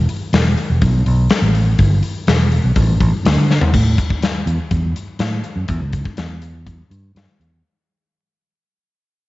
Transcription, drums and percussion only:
0.09 open hi-hat
0.33 snare, open hi-hat
0.57 open hi-hat
0.82 kick, open hi-hat
1.06 open hi-hat
1.30 snare, open hi-hat
1.55 open hi-hat
1.79 kick, open hi-hat
2.03 open hi-hat
2.27 snare, open hi-hat
2.52 open hi-hat
2.76 kick, open hi-hat
3.01 kick, open hi-hat
3.25 snare, open hi-hat
3.51 snare
3.61 floor tom
3.73 kick, crash
3.98 kick, closed hi-hat
4.10 kick
4.22 snare, closed hi-hat
4.47 closed hi-hat
4.71 kick, closed hi-hat
4.96 closed hi-hat
5.19 snare, closed hi-hat
5.44 closed hi-hat
5.68 kick, closed hi-hat
5.93 kick, closed hi-hat
6.05 kick
6.17 snare, closed hi-hat
6.42 closed hi-hat
6.67 kick, closed hi-hat
6.91 closed hi-hat
7.16 snare, closed hi-hat
7.41 closed hi-hat

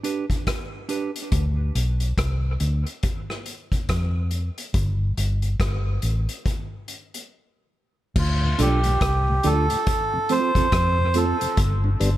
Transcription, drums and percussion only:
0.04 closed hi-hat
0.30 kick, closed hi-hat
0.47 kick, cross-stick, closed hi-hat
0.89 closed hi-hat
1.16 closed hi-hat
1.32 kick, closed hi-hat
1.75 closed hi-hat
2.00 closed hi-hat
2.18 kick, cross-stick, closed hi-hat
2.60 closed hi-hat
2.87 closed hi-hat
3.03 kick, closed hi-hat
3.30 cross-stick
3.46 closed hi-hat
3.72 kick, closed hi-hat
3.89 kick, cross-stick, closed hi-hat
4.31 closed hi-hat
4.58 closed hi-hat
4.74 kick, closed hi-hat
5.18 closed hi-hat
5.42 closed hi-hat
5.60 kick, cross-stick, closed hi-hat
6.02 closed hi-hat
6.29 closed hi-hat
6.46 kick, closed hi-hat
6.88 closed hi-hat
7.14 closed hi-hat
8.16 kick, crash
8.59 closed hi-hat
8.84 closed hi-hat
9.01 kick, cross-stick, closed hi-hat
9.43 closed hi-hat
9.70 closed hi-hat
9.87 kick, closed hi-hat
10.29 closed hi-hat
10.55 kick, closed hi-hat
10.72 kick, cross-stick, closed hi-hat
11.14 closed hi-hat
11.41 closed hi-hat
11.57 kick, closed hi-hat
12.01 closed hi-hat

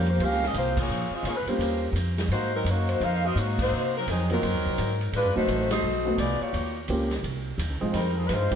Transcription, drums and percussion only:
0.06 ride
0.20 ride
0.31 snare
0.43 snare
0.54 hi-hat pedal, ride
0.77 kick, crash
1.25 hi-hat pedal, ride
1.47 ride
1.60 ride
1.96 hi-hat pedal, ride
2.18 snare, ride
2.31 ride
2.66 hi-hat pedal, ride
2.89 ride
3.01 ride
3.37 hi-hat pedal, ride
3.59 kick, crash
4.08 hi-hat pedal, ride
4.30 ride
4.43 ride
4.78 hi-hat pedal, ride
5.01 ride
5.13 ride
5.48 hi-hat pedal, ride
5.71 snare, ride
6.18 hi-hat pedal, ride
6.54 ride
6.88 hi-hat pedal, ride
7.11 snare, ride
7.24 ride
7.59 hi-hat pedal, ride
7.94 ride
8.29 snare, hi-hat pedal, ride
8.52 kick, ride

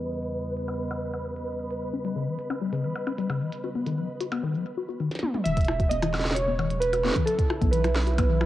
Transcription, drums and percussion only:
0.23 closed hi-hat
0.57 closed hi-hat
0.68 percussion blips
0.91 closed hi-hat, percussion blips
1.14 percussion blips
1.36 closed hi-hat
1.70 closed hi-hat
2.05 closed hi-hat
2.39 closed hi-hat
2.50 percussion blips
2.73 closed hi-hat
2.96 percussion blips
3.07 percussion blips
3.18 closed hi-hat
3.30 percussion blips
3.52 closed hi-hat
3.86 closed hi-hat
4.20 closed hi-hat
4.32 percussion blips
5.11 snare
5.15 snare
5.19 snare, mid tom
5.34 mid tom
5.45 closed hi-hat
5.57 kick, closed hi-hat
5.61 closed hi-hat
5.64 closed hi-hat, percussion blips
5.79 kick, closed hi-hat
5.91 closed hi-hat
6.02 closed hi-hat, percussion blips
6.14 snare, percussion blips
6.19 snare
6.25 snare
6.31 snare
6.36 closed hi-hat
6.59 percussion blips
6.70 closed hi-hat
6.82 closed hi-hat
6.93 closed hi-hat, percussion blips
7.05 snare
7.07 snare
7.09 snare
7.11 snare
7.14 kick, snare, closed hi-hat
7.27 closed hi-hat
7.39 kick, closed hi-hat
7.50 percussion blips
7.61 kick, closed hi-hat
7.73 closed hi-hat
7.84 closed hi-hat, percussion blips
7.96 snare, percussion blips
8.07 closed hi-hat
8.18 kick, closed hi-hat, percussion blips
8.41 percussion blips

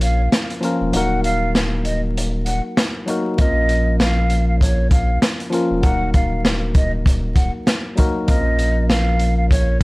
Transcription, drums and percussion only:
0.01 closed hi-hat
0.32 snare, closed hi-hat
0.50 closed hi-hat
0.63 closed hi-hat
0.93 closed hi-hat
1.24 closed hi-hat
1.55 snare, closed hi-hat
1.85 closed hi-hat
2.17 closed hi-hat
2.46 closed hi-hat
2.77 snare, closed hi-hat
3.08 closed hi-hat
3.38 kick, closed hi-hat
3.69 closed hi-hat
4.00 snare, closed hi-hat
4.30 closed hi-hat
4.61 kick, closed hi-hat
4.91 kick, closed hi-hat
5.22 snare, closed hi-hat
5.40 closed hi-hat
5.52 closed hi-hat
5.83 kick, closed hi-hat
6.14 kick, closed hi-hat
6.45 snare, closed hi-hat
6.75 kick, closed hi-hat
7.06 kick, closed hi-hat
7.36 kick, closed hi-hat
7.67 snare, closed hi-hat
7.97 kick, closed hi-hat
8.28 kick, closed hi-hat
8.59 closed hi-hat
8.90 snare, closed hi-hat
9.19 closed hi-hat
9.51 kick, closed hi-hat

